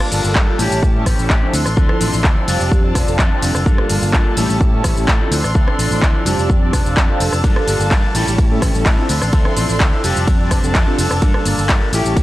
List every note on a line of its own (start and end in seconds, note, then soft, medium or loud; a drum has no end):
0.00 0.11 A#3 medium
0.00 0.58 A#3 medium
0.00 0.12 D4 loud
0.00 0.58 F4 medium
0.00 0.12 A4 loud
0.00 1.52 A5 medium
0.00 cross-stick medium
0.11 0.22 G1 medium
0.11 0.33 F3 medium
0.11 0.56 G3 medium
0.11 0.56 A#3 medium
0.11 0.34 A#3 medium
0.11 0.56 D4 medium
0.11 0.35 D4 medium
0.11 0.57 F4 medium
0.11 0.57 A4 medium
0.11 0.36 A4 medium
0.11 open hi-hat loud
0.11 shaker medium
0.24 0.33 G1 loud
0.24 shaker soft
0.35 0.46 G2 medium
0.35 0.58 F3 medium
0.35 0.59 D4 loud
0.35 0.60 A4 loud
0.35 kick loud
0.35 clap loud
0.35 shaker soft
0.58 0.69 A1 medium
0.58 0.95 E3 medium
0.58 0.92 G3 medium
0.58 0.92 A3 medium
0.58 0.95 A3 medium
0.58 0.92 C#4 medium
0.58 0.94 C#4 loud
0.58 0.92 E4 medium
0.58 1.52 G4 medium
0.58 0.92 G4 loud
0.58 0.93 G4 loud
0.58 1.53 C#5 medium
0.58 open hi-hat medium
0.58 shaker medium
0.71 0.81 A1 medium
0.71 shaker soft
0.83 1.02 A2 loud
0.83 kick loud
0.83 shaker soft
0.94 1.15 G3 loud
0.94 1.15 A3 medium
0.94 1.05 A3 medium
0.94 1.15 C#4 medium
0.94 1.06 C#4 medium
0.94 1.16 E4 medium
0.94 1.06 G4 medium
0.94 1.16 A4 loud
1.05 1.16 A1 medium
1.05 1.28 E3 medium
1.05 1.29 A3 medium
1.05 1.29 C#4 medium
1.05 1.30 G4 medium
1.05 kick medium
1.05 cross-stick medium
1.05 open hi-hat loud
1.05 shaker medium
1.18 1.28 A1 medium
1.18 1.29 G3 medium
1.18 1.29 A3 medium
1.18 1.29 C#4 medium
1.18 1.29 E4 medium
1.18 1.30 A4 loud
1.18 shaker soft
1.29 1.40 A2 loud
1.29 1.52 E3 medium
1.29 1.53 A3 loud
1.29 1.54 C#4 medium
1.29 1.54 G4 loud
1.29 kick loud
1.29 clap loud
1.29 shaker soft
1.42 1.60 F3 medium
1.42 1.60 C4 medium
1.42 1.60 D4 medium
1.42 1.60 E4 medium
1.42 1.60 A4 loud
1.52 1.64 D2 loud
1.52 1.65 F3 medium
1.52 1.66 C4 medium
1.52 1.65 D4 medium
1.52 1.63 A4 medium
1.52 3.64 D5 medium
1.52 2.47 C6 medium
1.52 open hi-hat medium
1.52 shaker medium
1.64 1.75 A1 loud
1.64 1.76 C4 medium
1.64 1.76 D4 medium
1.64 1.76 A4 medium
1.64 cross-stick medium
1.64 shaker soft
1.76 1.87 D2 loud
1.76 1.98 F3 loud
1.76 1.95 F3 loud
1.76 1.95 C4 medium
1.76 2.00 C4 medium
1.76 1.95 D4 medium
1.76 2.00 D4 loud
1.76 1.95 E4 medium
1.76 1.96 A4 loud
1.76 2.01 A4 loud
1.76 kick loud
1.76 shaker soft
1.89 cross-stick medium
2.00 2.11 A1 medium
2.00 2.22 F3 medium
2.00 2.45 F3 medium
2.00 2.45 C4 medium
2.00 2.23 C4 medium
2.00 2.45 D4 medium
2.00 2.24 D4 medium
2.00 2.45 E4 medium
2.00 2.45 A4 medium
2.00 2.24 A4 medium
2.00 open hi-hat loud
2.00 shaker medium
2.13 2.22 A1 loud
2.13 shaker soft
2.23 2.34 D2 medium
2.23 2.46 F3 loud
2.23 2.47 C4 loud
2.23 2.47 D4 medium
2.23 2.48 A4 loud
2.23 kick loud
2.23 clap loud
2.23 shaker soft
2.47 2.58 F1 medium
2.47 2.83 F3 medium
2.47 2.80 G3 medium
2.47 2.81 C4 medium
2.47 2.84 C4 medium
2.47 2.81 D4 medium
2.47 2.83 D4 loud
2.47 2.81 F4 medium
2.47 3.65 F4 medium
2.47 2.81 G4 loud
2.47 2.81 A4 loud
2.47 3.65 A5 medium
2.47 open hi-hat loud
2.47 shaker medium
2.60 2.70 F1 medium
2.60 shaker soft
2.72 2.91 F2 loud
2.72 kick loud
2.72 shaker soft
2.83 3.04 G3 loud
2.83 3.04 C4 medium
2.83 2.94 C4 medium
2.83 3.04 D4 medium
2.83 2.95 D4 medium
2.83 3.04 F4 medium
2.83 2.95 A4 medium
2.83 3.05 D5 loud
2.94 3.05 F1 medium
2.94 3.17 F3 medium
2.94 3.17 C4 medium
2.94 3.18 D4 medium
2.94 3.19 A4 medium
2.94 kick medium
2.94 cross-stick medium
2.94 open hi-hat loud
2.94 shaker medium
3.07 3.17 F1 loud
3.07 3.18 G3 loud
3.07 3.18 C4 medium
3.07 3.18 D4 medium
3.07 3.19 F4 medium
3.07 3.19 A4 loud
3.07 shaker soft
3.18 3.29 F2 loud
3.18 3.40 F3 medium
3.18 3.41 C4 loud
3.18 3.42 D4 loud
3.18 3.43 A4 loud
3.18 kick loud
3.18 clap loud
3.18 shaker soft
3.30 3.49 G3 medium
3.30 3.49 C4 medium
3.30 3.49 D4 medium
3.30 3.49 F4 medium
3.30 3.49 A4 loud
3.41 3.53 F1 loud
3.41 3.54 F3 medium
3.41 3.55 C4 medium
3.41 3.54 D4 medium
3.41 3.52 A4 medium
3.41 open hi-hat loud
3.41 shaker medium
3.53 3.64 F1 loud
3.53 3.66 C4 medium
3.53 3.65 D4 medium
3.53 3.65 A4 medium
3.53 cross-stick medium
3.53 shaker soft
3.65 3.76 G2 loud
3.65 3.87 F3 medium
3.65 3.84 G3 loud
3.65 3.84 A#3 medium
3.65 3.89 A#3 loud
3.65 4.36 A#3 medium
3.65 3.84 D4 medium
3.65 3.89 D4 loud
3.65 3.85 F4 medium
3.65 4.36 F4 medium
3.65 3.85 A4 loud
3.65 3.90 A4 loud
3.65 5.30 A5 medium
3.65 kick loud
3.65 shaker soft
3.78 cross-stick medium
3.88 4.00 G1 medium
3.88 4.11 F3 medium
3.88 4.34 G3 medium
3.88 4.34 A#3 medium
3.88 4.12 A#3 medium
3.88 4.34 D4 medium
3.88 4.13 D4 medium
3.88 4.34 F4 medium
3.88 4.34 A4 medium
3.88 4.13 A4 medium
3.88 open hi-hat loud
3.88 shaker medium
4.02 4.11 G1 loud
4.02 shaker soft
4.12 4.23 G2 medium
4.12 4.36 F3 loud
4.12 4.36 A#3 medium
4.12 4.37 D4 loud
4.12 4.37 A4 loud
4.12 kick loud
4.12 clap loud
4.12 shaker soft
4.36 4.47 A1 medium
4.36 4.72 G3 medium
4.36 4.70 G3 medium
4.36 4.70 A3 medium
4.36 4.73 C#4 medium
4.36 4.70 C#4 medium
4.36 4.70 E4 medium
4.36 4.72 E4 loud
4.36 5.31 G4 medium
4.36 4.70 G4 loud
4.36 4.71 A4 loud
4.36 5.31 C#5 medium
4.36 open hi-hat loud
4.36 shaker medium
4.49 4.59 A1 medium
4.49 shaker soft
4.61 4.80 A2 loud
4.61 kick loud
4.61 shaker soft
4.72 4.93 G3 medium
4.72 4.93 A3 medium
4.72 4.94 C#4 medium
4.72 4.83 C#4 medium
4.72 4.94 E4 medium
4.72 4.84 E4 medium
4.72 4.84 A4 medium
4.72 4.94 A4 loud
4.83 4.94 A1 medium
4.83 5.06 G3 medium
4.83 5.07 C#4 medium
4.83 5.07 E4 medium
4.83 5.08 A4 medium
4.83 kick medium
4.83 cross-stick medium
4.83 open hi-hat loud
4.83 shaker medium
4.96 5.06 A1 loud
4.96 5.07 G3 medium
4.96 5.07 A3 medium
4.96 5.08 C#4 medium
4.96 5.08 E4 medium
4.96 5.08 A4 loud
4.96 shaker soft
5.07 5.18 A2 loud
5.07 5.30 G3 medium
5.07 5.31 C#4 medium
5.07 5.32 E4 loud
5.07 5.32 A4 loud
5.07 kick loud
5.07 clap loud
5.07 shaker soft
5.20 5.38 F3 medium
5.20 5.38 C4 medium
5.20 5.38 D4 medium
5.20 5.38 E4 medium
5.20 5.38 A4 loud
5.30 5.41 D2 loud
5.30 5.43 F3 medium
5.30 5.44 C4 medium
5.30 7.42 D4 medium
5.30 5.43 D4 medium
5.30 5.42 A4 medium
5.30 7.42 D5 medium
5.30 6.25 C6 medium
5.30 open hi-hat loud
5.30 shaker medium
5.43 5.53 A1 loud
5.43 5.54 C4 medium
5.43 5.55 D4 medium
5.43 5.55 A4 medium
5.43 cross-stick medium
5.43 shaker soft
5.54 5.65 D2 loud
5.54 5.77 F3 medium
5.54 5.73 F3 loud
5.54 5.73 C4 medium
5.54 5.78 C4 medium
5.54 5.73 D4 medium
5.54 5.79 D4 loud
5.54 5.74 E4 medium
5.54 5.74 A4 loud
5.54 5.80 A4 loud
5.54 kick loud
5.54 shaker soft
5.68 cross-stick medium
5.78 5.89 A1 medium
5.78 6.01 F3 medium
5.78 6.23 F3 medium
5.78 6.23 C4 medium
5.78 6.01 C4 medium
5.78 6.23 D4 medium
5.78 6.02 D4 medium
5.78 6.23 E4 medium
5.78 6.23 A4 medium
5.78 6.03 A4 medium
5.78 open hi-hat loud
5.78 shaker medium
5.91 6.00 A1 loud
5.91 shaker soft
6.02 6.12 D2 medium
6.02 6.24 F3 loud
6.02 6.25 C4 medium
6.02 6.26 D4 loud
6.02 6.27 A4 loud
6.02 kick loud
6.02 clap loud
6.02 shaker soft
6.25 6.36 F1 medium
6.25 6.62 F3 medium
6.25 6.59 G3 medium
6.25 6.59 C4 medium
6.25 6.62 C4 loud
6.25 6.59 D4 medium
6.25 6.61 D4 medium
6.25 6.59 F4 medium
6.25 6.59 G4 loud
6.25 6.59 A4 loud
6.25 9.07 A5 loud
6.25 open hi-hat loud
6.25 shaker medium
6.38 6.47 F1 medium
6.38 shaker soft
6.50 6.69 F2 loud
6.50 kick loud
6.50 shaker soft
6.61 6.82 G3 medium
6.61 6.82 C4 medium
6.61 6.72 C4 medium
6.61 6.82 D4 medium
6.61 6.73 D4 medium
6.61 6.82 F4 medium
6.61 6.73 A4 medium
6.61 6.82 D5 loud
6.72 6.83 F1 medium
6.72 6.95 F3 medium
6.72 6.95 C4 medium
6.72 6.96 D4 medium
6.72 6.97 A4 medium
6.72 kick medium
6.72 cross-stick medium
6.72 open hi-hat loud
6.72 shaker medium
6.85 6.95 F1 medium
6.85 6.96 G3 medium
6.85 6.96 C4 medium
6.85 6.96 D4 medium
6.85 6.96 F4 medium
6.85 6.96 A4 loud
6.85 shaker soft
6.96 7.07 F2 loud
6.96 7.18 F3 medium
6.96 7.19 C4 loud
6.96 7.20 D4 medium
6.96 7.21 A4 loud
6.96 kick loud
6.96 clap loud
6.96 shaker soft
7.08 7.27 G3 medium
7.08 7.27 C4 medium
7.08 7.27 D4 medium
7.08 7.27 F4 medium
7.08 7.27 A4 loud
7.19 7.30 F1 loud
7.19 7.32 F3 medium
7.19 7.33 C4 medium
7.19 7.32 D4 medium
7.19 7.30 A4 medium
7.19 open hi-hat loud
7.19 shaker medium
7.32 7.42 F1 loud
7.32 7.44 C4 medium
7.32 7.44 D4 medium
7.32 7.43 A4 medium
7.32 cross-stick medium
7.32 shaker soft
7.43 7.54 G2 loud
7.43 7.66 F3 medium
7.43 7.62 G3 loud
7.43 7.62 A#3 medium
7.43 8.14 A#3 medium
7.43 7.67 A#3 loud
7.43 7.62 D4 medium
7.43 7.68 D4 loud
7.43 8.14 F4 medium
7.43 7.62 F4 medium
7.43 7.63 A4 loud
7.43 7.68 A4 loud
7.43 kick loud
7.43 ride medium
7.43 shaker soft
7.56 cross-stick medium
7.67 7.78 G1 medium
7.67 7.89 F3 medium
7.67 8.12 G3 medium
7.67 8.12 A#3 medium
7.67 7.90 A#3 medium
7.67 8.12 D4 medium
7.67 7.91 D4 medium
7.67 8.12 F4 medium
7.67 8.12 A4 medium
7.67 7.92 A4 medium
7.67 open hi-hat loud
7.67 shaker medium
7.79 7.89 G1 loud
7.79 shaker soft
7.91 8.01 G2 medium
7.91 8.15 A#3 medium
7.91 8.15 D4 loud
7.91 8.15 A4 loud
7.91 kick loud
7.91 clap loud
7.91 ride medium
7.91 shaker soft
8.14 8.25 A1 medium
8.14 8.50 G3 medium
8.14 8.48 G3 medium
8.14 8.48 A3 medium
8.14 8.48 C#4 medium
8.14 8.51 C#4 medium
8.14 8.48 E4 medium
8.14 8.50 E4 medium
8.14 9.08 G4 medium
8.14 8.48 G4 medium
8.14 8.49 A4 loud
8.14 9.08 C#5 medium
8.14 open hi-hat medium
8.14 shaker medium
8.27 8.37 A1 medium
8.27 shaker soft
8.38 8.58 A2 loud
8.38 kick loud
8.38 ride medium
8.38 shaker soft
8.50 8.71 G3 medium
8.50 8.71 A3 medium
8.50 8.71 C#4 medium
8.50 8.61 C#4 medium
8.50 8.72 E4 medium
8.50 8.62 E4 medium
8.50 8.62 A4 medium
8.50 8.72 A4 loud
8.61 8.72 A1 medium
8.61 8.84 G3 medium
8.61 8.84 C#4 medium
8.61 8.85 E4 medium
8.61 8.86 A4 medium
8.61 kick medium
8.61 cross-stick medium
8.61 open hi-hat loud
8.61 shaker medium
8.74 8.84 A1 loud
8.74 8.85 G3 loud
8.74 8.85 A3 medium
8.74 8.85 C#4 medium
8.74 8.86 E4 medium
8.74 8.86 A4 loud
8.74 shaker soft
8.85 8.96 A2 loud
8.85 9.08 G3 medium
8.85 9.09 C#4 loud
8.85 9.10 E4 loud
8.85 9.10 A4 loud
8.85 kick loud
8.85 clap loud
8.85 ride medium
8.85 shaker soft
8.98 9.16 F3 medium
8.98 9.16 C4 medium
8.98 9.16 D4 medium
8.98 9.16 E4 medium
8.98 9.16 A4 loud
9.08 9.19 D2 loud
9.08 9.21 F3 medium
9.08 9.22 C4 medium
9.08 11.90 D4 medium
9.08 9.21 D4 medium
9.08 9.19 A4 medium
9.08 10.03 D5 medium
9.08 10.03 C6 medium
9.08 open hi-hat loud
9.08 shaker medium
9.20 9.31 A1 loud
9.20 9.32 C4 medium
9.20 9.33 D4 medium
9.20 9.32 A4 medium
9.20 cross-stick medium
9.20 shaker soft
9.32 9.43 D2 loud
9.32 9.54 F3 medium
9.32 9.51 F3 loud
9.32 9.51 C4 medium
9.32 9.56 C4 medium
9.32 9.52 D4 medium
9.32 9.57 D4 loud
9.32 9.52 E4 medium
9.32 9.52 A4 loud
9.32 9.57 A4 loud
9.32 kick loud
9.32 ride medium
9.32 shaker soft
9.45 cross-stick medium
9.56 9.67 A1 medium
9.56 9.78 F3 medium
9.56 10.01 F3 medium
9.56 10.01 C4 medium
9.56 9.79 C4 medium
9.56 10.01 D4 medium
9.56 9.80 D4 medium
9.56 10.01 E4 medium
9.56 10.01 A4 medium
9.56 9.80 A4 medium
9.56 open hi-hat loud
9.56 shaker medium
9.69 9.78 A1 loud
9.69 shaker soft
9.79 9.90 D2 medium
9.79 10.02 F3 medium
9.79 10.03 C4 loud
9.79 10.03 D4 loud
9.79 10.04 A4 loud
9.79 kick loud
9.79 clap loud
9.79 ride medium
9.79 shaker soft
10.03 10.14 F1 medium
10.03 10.39 F3 medium
10.03 10.37 G3 medium
10.03 10.37 C4 medium
10.03 10.40 C4 loud
10.03 10.37 D4 medium
10.03 10.39 D4 loud
10.03 10.37 F4 medium
10.03 10.37 G4 loud
10.03 10.38 A4 loud
10.03 11.21 D5 medium
10.03 11.91 A5 loud
10.03 open hi-hat medium
10.03 shaker medium
10.16 10.26 F1 medium
10.16 shaker soft
10.27 10.47 F2 loud
10.27 kick loud
10.27 ride medium
10.27 shaker soft
10.39 10.60 G3 medium
10.39 10.60 C4 medium
10.39 10.50 C4 medium
10.39 10.60 D4 medium
10.39 10.51 D4 medium
10.39 10.61 F4 medium
10.39 10.51 A4 medium
10.39 10.61 D5 loud
10.50 10.61 F1 medium
10.50 10.73 F3 medium
10.50 10.74 C4 medium
10.50 10.75 D4 medium
10.50 10.75 A4 medium
10.50 kick medium
10.50 cross-stick medium
10.50 open hi-hat loud
10.50 shaker medium
10.63 10.73 F1 loud
10.63 10.74 G3 medium
10.63 10.74 C4 medium
10.63 10.74 D4 medium
10.63 10.74 F4 medium
10.63 10.74 A4 loud
10.63 shaker soft
10.74 10.85 F2 loud
10.74 10.96 F3 medium
10.74 10.97 C4 loud
10.74 10.98 D4 loud
10.74 10.99 A4 loud
10.74 kick loud
10.74 clap loud
10.74 ride medium
10.74 shaker soft
10.87 11.05 G3 medium
10.87 11.05 C4 medium
10.87 11.05 D4 medium
10.87 11.05 F4 medium
10.87 11.05 A4 loud
10.97 11.09 F1 loud
10.97 11.10 F3 medium
10.97 11.11 C4 medium
10.97 11.10 D4 medium
10.97 11.09 A4 medium
10.97 open hi-hat medium
10.97 shaker medium
11.10 11.20 F1 loud
11.10 11.22 C4 medium
11.10 11.22 D4 medium
11.10 11.22 A4 medium
11.10 cross-stick medium
11.10 shaker soft
11.22 11.32 G2 loud
11.22 11.43 F3 medium
11.22 11.40 G3 loud
11.22 11.40 A#3 medium
11.22 11.92 A#3 medium
11.22 11.45 A#3 loud
11.22 11.41 D4 medium
11.22 11.46 D4 loud
11.22 11.41 F4 medium
11.22 11.41 A4 loud
11.22 11.46 A4 loud
11.22 kick loud
11.22 ride medium
11.22 shaker soft
11.34 cross-stick medium
11.45 11.56 G1 medium
11.45 11.67 F3 medium
11.45 11.90 G3 medium
11.45 11.90 A#3 medium
11.45 11.68 A#3 medium
11.45 11.90 D4 medium
11.45 11.69 D4 medium
11.45 11.90 F4 medium
11.45 11.90 A4 medium
11.45 11.70 A4 medium
11.45 open hi-hat loud
11.45 shaker medium
11.58 11.67 G1 loud
11.58 shaker soft
11.69 11.79 G2 medium
11.69 11.92 F3 medium
11.69 11.93 A#3 medium
11.69 11.93 D4 loud
11.69 11.94 A4 loud
11.69 kick loud
11.69 clap loud
11.69 ride medium
11.69 shaker soft
11.93 12.03 A1 medium
11.93 12.23 E3 medium
11.93 12.23 G3 medium
11.93 12.23 A3 medium
11.93 12.23 C#4 medium
11.93 12.23 C#4 loud
11.93 12.23 E4 medium
11.93 12.23 G4 medium
11.93 12.23 G4 loud
11.93 12.23 C#5 medium
11.93 12.23 A5 medium
11.93 open hi-hat medium
11.93 shaker medium
12.05 12.14 A1 medium
12.05 shaker soft
12.17 12.23 A2 loud
12.17 kick loud
12.17 ride medium
12.17 shaker soft